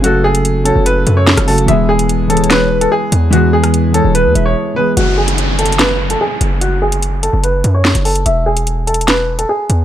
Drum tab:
HH |x--------x--x-----x-----x-----x--------x--o--x--|x--------x--x-----x-x-x-x--------x--------x-----|x--------x--x-----x-----x-----x-----------------|x--------x--x-----x-x-x-x--------x--------x-----|
SD |------------------------------------o--r--------|------------------------o-----------------------|---------r--------------------------------------|------------------------o-----------------------|

HH |x--------x--x-----x-----x-----x--------x--o--x--|x--------x--x-----x-x-x-x--------x--------x-----|
SD |------------------------------------o-----------|------------------------o-----------------------|